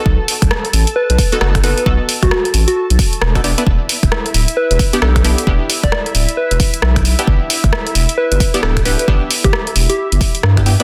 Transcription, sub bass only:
X:1
M:4/4
L:1/16
Q:"Swing 16ths" 1/4=133
K:Em
V:1 name="Sub bass" clef=bass
B,,, z2 B,,, z2 A,,, z2 B,,, z2 F,,,3 z | B,,, z2 B,,, z2 A,,, z2 B,,, z2 E,,,3 z | E,,, z2 E,,, z2 D,,, z2 E,,, z2 B,,,3 z | E,,, z2 E,,, z2 D,,, z2 E,,, z2 B,,,3 z |
G,,, z2 G,,, z2 E,,, z2 G,,, z2 D,,,3 z | G,,, z2 G,,, z2 E,,, z2 G,,, z2 G,,3 z |]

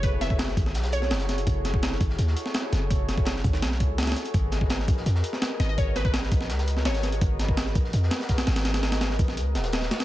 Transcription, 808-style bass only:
X:1
M:4/4
L:1/8
Q:1/4=167
K:G#phr
V:1 name="808-style bass" clef=bass
F,,,3 G,,, B,,,2 F,,,2 | F,,,3 G,,, D,, z2 F,,,- | F,,,3 G,,, B,,, C,,2 z | G,,,3 ^A,,, ^E,, z2 G,,,- |
G,,,3 ^A,,, C,,2 G,,,2 | G,,,3 ^A,,, ^E,, z2 G,,,- | G,,,3 ^A,,, C,, D,,,2 z |]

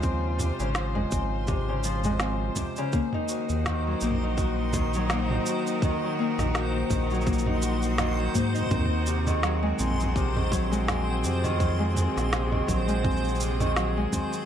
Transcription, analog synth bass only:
X:1
M:4/4
L:1/16
Q:"Swing 16ths" 1/4=83
K:Ebdor
V:1 name="Analog synth bass" clef=bass
E,,3 A,,,3 A,,,8 z2 | z3 E,,3 B,,,8 z2 | z3 B,,,3 B,,,8 A,,2 | E,,6 B,,,8 F,,2- |
F,,3 B,,,3 B,,,8 z2 |]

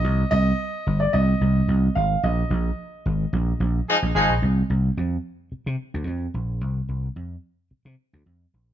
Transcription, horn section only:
X:1
M:4/4
L:1/16
Q:1/4=110
K:Bbmix
V:1 name="Horn section"
z16 | z12 [F,A,EA] z [F,A,EA]2 | z16 | z16 |]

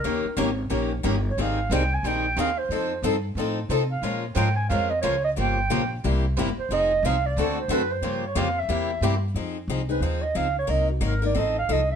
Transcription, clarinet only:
X:1
M:4/4
L:1/8
Q:"Swing" 1/4=180
K:Fm
V:1 name="Clarinet"
B2 z4 z d | f2 g a g2 f c- | c2 z4 z f- | f z g a f e d e |
g4 z3 c | e2 f =d2 c =B c- | c d f =e4 z | z3 =B c e f d |
e _G B =d e f e =e |]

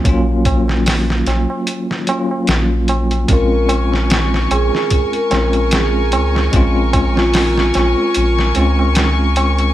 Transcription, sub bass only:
X:1
M:4/4
L:1/8
Q:"Swing 16ths" 1/4=74
K:Bbm
V:1 name="Sub bass" clef=bass
B,,,3 B,,, z2 B,,,2 | B,,,3 B,,, z B,,,2 D,, | B,,,3 B,,, B,,, D,,3 |]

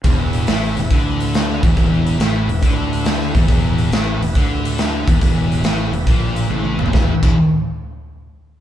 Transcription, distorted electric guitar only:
X:1
M:4/4
L:1/8
Q:"Swing" 1/4=139
K:Em
V:1 name="Distorted electric guitar" clef=bass
E,,2 A,, E,, D,3 E,, | E,,2 A,, E,, D,3 E,, | E,,2 A,, E,, D,3 E,, | E,,2 A,, E,, ^A,,2 =A,, E,, |
[E,,B,,E,] [E,,B,,E,] z6 |]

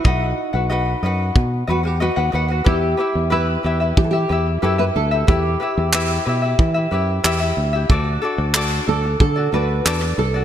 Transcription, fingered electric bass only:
X:1
M:4/4
L:1/16
Q:1/4=92
K:Em
V:1 name="Fingered electric bass" clef=bass
B,,,2 z B,,,3 F,,2 B,,2 E,,3 ^D,, D,,2 | E,,2 z E,,3 E,,2 E,2 E,,2 F,,2 D,,2 | E,,2 z E,,3 B,,2 E,2 F,,2 E,,2 D,,2 | D,,2 z D,,3 D,,2 D,2 D,,2 E,,2 C,,2 |]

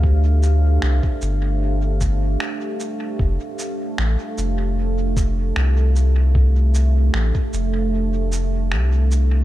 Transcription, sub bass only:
X:1
M:4/4
L:1/8
Q:1/4=76
K:Fmix
V:1 name="Sub bass" clef=bass
D,,2 C,, G,,,3 z2 | F,,, z A,,, F,,,3 C,,2- | C,,2 A,,, F,,,3 C,,2 |]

